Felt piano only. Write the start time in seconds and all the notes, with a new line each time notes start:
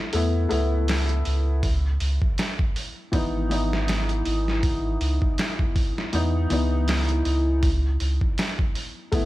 0.13 A3 B3 E4
0.49 A3 B3 E4
3.12 E3 B3 D#4
3.50 E3 B3 D#4
6.13 E3 B3 D#4
6.50 E3 B3 D#4
9.12 A3 B3 E4